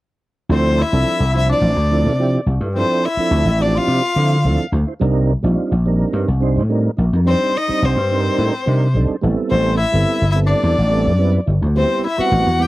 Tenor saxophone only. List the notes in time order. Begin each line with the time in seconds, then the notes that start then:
0.51 C4
0.79 E4
1.33 E4
1.49 D4
2.75 C4
3.04 E4
3.61 D4
3.75 F4
7.27 C4
7.56 D#4
7.85 C4
9.51 C4
9.77 E4
10.32 E4
10.46 D4
11.77 C4
12.04 E4
12.18 F#4
12.61 G4